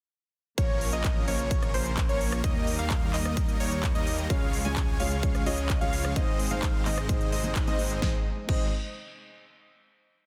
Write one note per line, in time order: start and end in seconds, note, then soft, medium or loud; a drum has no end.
0.58 0.90 A#1 loud
0.58 2.42 C#3 medium
0.58 0.90 F3 medium
0.58 2.42 F3 medium
0.58 0.90 A#3 medium
0.58 4.26 A#3 medium
0.58 0.90 C#4 medium
0.58 0.90 A#4 medium
0.58 0.90 C#5 loud
0.58 0.90 C#5 medium
0.58 kick loud
0.58 closed hi-hat medium
0.81 open hi-hat loud
0.93 1.25 A#1 loud
0.93 1.25 F3 medium
0.93 1.25 A#3 medium
0.93 1.25 C#4 medium
0.93 1.25 A#4 medium
0.93 1.25 D#5 loud
0.93 closed hi-hat medium
1.04 kick loud
1.04 clap loud
1.04 closed hi-hat medium
1.27 1.72 A#1 loud
1.27 1.71 F3 medium
1.27 1.71 A#3 medium
1.27 1.71 C#4 medium
1.27 1.71 A#4 medium
1.27 1.71 C#5 medium
1.27 open hi-hat loud
1.39 closed hi-hat medium
1.51 kick loud
1.51 closed hi-hat medium
1.62 cross-stick medium
1.62 closed hi-hat soft
1.74 2.07 A#1 loud
1.74 2.06 F3 medium
1.74 2.06 A#3 medium
1.74 2.06 C#4 medium
1.74 2.06 A#4 medium
1.74 2.06 C5 medium
1.74 open hi-hat loud
1.86 closed hi-hat medium
1.97 kick loud
1.97 clap loud
1.97 closed hi-hat medium
2.09 2.42 A#1 loud
2.09 2.41 F3 loud
2.09 2.41 A#3 medium
2.09 2.41 C#4 medium
2.09 2.41 A#4 medium
2.09 2.41 C#5 loud
2.09 closed hi-hat soft
2.21 open hi-hat loud
2.32 cross-stick medium
2.32 closed hi-hat medium
2.44 2.77 D#2 loud
2.44 4.28 D#3 medium
2.44 2.76 G3 medium
2.44 4.28 G3 medium
2.44 2.76 A#3 medium
2.44 2.76 D#4 medium
2.44 2.76 A#4 medium
2.44 2.76 D#5 loud
2.44 2.76 D#5 medium
2.44 kick loud
2.44 closed hi-hat medium
2.67 open hi-hat loud
2.79 3.11 D#2 medium
2.79 3.11 G3 medium
2.79 3.11 A#3 medium
2.79 3.11 D#4 medium
2.79 3.11 A#4 medium
2.79 3.11 F5 loud
2.79 closed hi-hat medium
2.90 kick loud
2.90 clap loud
2.90 closed hi-hat medium
3.14 3.58 D#2 loud
3.14 3.57 G3 medium
3.14 3.57 A#3 medium
3.14 3.57 D#4 medium
3.14 3.57 A#4 medium
3.14 3.57 D#5 medium
3.14 clap medium
3.14 open hi-hat loud
3.25 cross-stick medium
3.25 closed hi-hat medium
3.37 kick loud
3.37 closed hi-hat medium
3.49 closed hi-hat soft
3.60 3.93 D#2 loud
3.60 3.92 G3 medium
3.60 3.92 A#3 medium
3.60 3.92 D#4 medium
3.60 3.92 A#4 medium
3.60 3.92 C#5 medium
3.60 open hi-hat loud
3.72 closed hi-hat medium
3.83 kick loud
3.83 clap loud
3.83 closed hi-hat medium
3.95 4.28 D#2 loud
3.95 4.27 G3 loud
3.95 4.27 A#3 medium
3.95 4.27 D#4 medium
3.95 4.27 A#4 medium
3.95 4.27 D#5 loud
3.95 closed hi-hat soft
4.07 open hi-hat loud
4.18 closed hi-hat medium
4.29 4.63 C#2 loud
4.29 4.42 C#3 medium
4.29 6.14 C#3 medium
4.29 6.14 F3 medium
4.29 4.42 G#3 medium
4.29 7.98 G#3 medium
4.29 4.62 G#3 medium
4.29 4.62 C#4 medium
4.29 4.42 C#4 medium
4.29 4.62 F4 medium
4.29 4.43 F4 medium
4.29 4.62 C#5 medium
4.29 4.43 C#5 loud
4.29 4.62 F5 medium
4.29 kick loud
4.29 closed hi-hat medium
4.53 open hi-hat loud
4.64 4.97 C#2 loud
4.64 4.77 C#3 medium
4.64 4.77 G#3 medium
4.64 4.97 G#3 medium
4.64 4.97 C#4 medium
4.64 4.77 C#4 medium
4.64 4.97 F4 medium
4.64 4.78 F4 medium
4.64 4.97 C#5 medium
4.64 4.78 C#5 loud
4.64 4.97 G#5 loud
4.64 closed hi-hat medium
4.76 kick loud
4.76 clap loud
4.76 closed hi-hat medium
4.99 5.44 C#2 loud
4.99 5.12 C#3 medium
4.99 5.12 G#3 medium
4.99 5.44 G#3 medium
4.99 5.44 C#4 medium
4.99 5.12 C#4 medium
4.99 5.44 F4 medium
4.99 5.12 F4 medium
4.99 5.44 C#5 medium
4.99 5.13 C#5 medium
4.99 5.43 F5 medium
4.99 5.44 F5 medium
4.99 open hi-hat loud
5.11 closed hi-hat medium
5.22 5.43 C#3 medium
5.22 5.43 G#3 medium
5.22 5.44 C#4 medium
5.22 5.44 F4 medium
5.22 5.44 C#5 medium
5.22 kick loud
5.22 closed hi-hat medium
5.35 cross-stick medium
5.35 closed hi-hat soft
5.46 5.79 C#2 medium
5.46 5.66 C#3 medium
5.46 5.66 G#3 medium
5.46 5.78 G#3 medium
5.46 5.66 C#4 medium
5.46 5.78 C#4 medium
5.46 5.78 F4 medium
5.46 5.66 F4 medium
5.46 5.78 C#5 medium
5.46 5.67 C#5 loud
5.46 5.78 D#5 medium
5.46 open hi-hat loud
5.58 closed hi-hat medium
5.69 kick loud
5.69 clap loud
5.69 closed hi-hat medium
5.81 6.14 C#2 loud
5.81 6.13 C#3 medium
5.81 6.13 G#3 medium
5.81 6.13 C#4 medium
5.81 6.13 F4 medium
5.81 6.13 C#5 medium
5.81 6.14 C#5 loud
5.81 6.13 F5 loud
5.81 closed hi-hat soft
5.93 open hi-hat loud
6.05 cross-stick medium
6.05 closed hi-hat medium
6.15 6.49 G#1 loud
6.15 6.28 G#2 medium
6.15 8.00 C3 medium
6.15 8.00 D#3 medium
6.15 6.28 G#3 medium
6.15 6.48 G#3 medium
6.15 6.29 C4 medium
6.15 6.48 C4 medium
6.15 6.48 D#4 medium
6.15 6.29 D#4 medium
6.15 6.48 C5 medium
6.15 6.29 C5 loud
6.15 6.48 D#5 medium
6.15 kick loud
6.15 closed hi-hat medium
6.39 open hi-hat loud
6.50 6.83 G#1 loud
6.50 6.63 G#2 medium
6.50 6.63 G#3 medium
6.50 6.83 G#3 medium
6.50 6.83 C4 medium
6.50 6.64 C4 medium
6.50 6.83 D#4 medium
6.50 6.64 D#4 medium
6.50 6.83 C5 medium
6.50 6.64 C5 loud
6.50 6.83 F5 loud
6.50 closed hi-hat medium
6.63 kick loud
6.63 clap loud
6.63 closed hi-hat medium
6.85 7.30 G#1 medium
6.85 6.98 G#2 medium
6.85 6.98 G#3 medium
6.85 7.30 G#3 medium
6.85 7.30 C4 medium
6.85 6.98 C4 medium
6.85 7.30 D#4 medium
6.85 6.99 D#4 medium
6.85 7.30 C5 medium
6.85 6.99 C5 medium
6.85 7.30 D#5 medium
6.85 clap medium
6.85 open hi-hat loud
6.98 cross-stick medium
6.98 closed hi-hat medium
7.09 7.29 G#2 medium
7.09 7.29 G#3 medium
7.09 7.30 C4 medium
7.09 7.30 D#4 medium
7.09 7.30 C5 medium
7.09 kick loud
7.09 closed hi-hat medium
7.21 closed hi-hat soft
7.32 7.65 G#1 loud
7.32 7.64 G#3 medium
7.32 7.64 C4 medium
7.32 7.64 D#4 medium
7.32 7.64 C5 medium
7.32 7.64 D#5 loud
7.32 7.65 D#5 medium
7.32 open hi-hat loud
7.44 7.64 G#2 medium
7.44 7.64 G#3 medium
7.44 7.64 C4 medium
7.44 7.64 D#4 medium
7.44 7.64 C5 loud
7.44 closed hi-hat medium
7.56 kick loud
7.56 clap loud
7.56 closed hi-hat medium
7.67 8.00 G#1 loud
7.67 7.76 G#2 loud
7.67 7.76 G#3 medium
7.67 7.99 G#3 loud
7.67 7.99 C4 medium
7.67 7.76 C4 medium
7.67 7.99 D#4 medium
7.67 7.76 D#4 medium
7.67 7.99 C5 medium
7.67 7.76 C5 loud
7.67 7.99 D#5 loud
7.67 closed hi-hat soft
7.78 7.99 G#2 medium
7.78 7.99 G#3 medium
7.78 7.99 C4 medium
7.78 8.00 D#4 medium
7.78 8.00 C5 loud
7.78 open hi-hat loud
7.91 closed hi-hat medium
8.00 8.15 G#1 loud
8.00 8.24 C3 medium
8.00 8.24 D#3 medium
8.00 8.14 G#3 medium
8.00 8.24 G#3 medium
8.00 8.15 G#3 medium
8.00 8.15 C4 medium
8.00 8.15 D#4 medium
8.00 8.15 C5 medium
8.00 8.16 C5 loud
8.00 8.15 D#5 medium
8.00 8.15 D#5 loud
8.00 kick loud
8.00 snare medium
8.47 8.70 G#1 loud
8.47 8.65 G#3 medium
8.47 8.66 G#3 medium
8.47 8.66 C4 medium
8.47 8.66 D#4 medium
8.47 8.66 C5 medium
8.47 8.67 C5 medium
8.47 8.66 D#5 loud
8.47 kick loud
8.47 crash medium